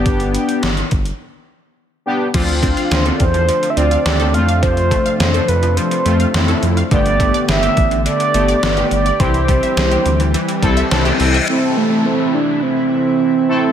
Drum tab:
CC |----------------|x---------------|----------------|----------------|
HH |xxxxxxxx--------|xxxxxxxxxxxxxxxx|xxxxxxxxxxxxxxxx|xxxxxxxxxxxxxxxx|
SD |----o-----------|----o-------o---|----o-------o---|----o-------o---|
BD |o-----o---------|o-o---o---------|o-o-------------|o-o---o---------|

CC |----------------|----------------|
HH |xxxxxxxxxxxxxxox|----------------|
SD |----o-------o---|----------------|
BD |o-o-------o-----|----------------|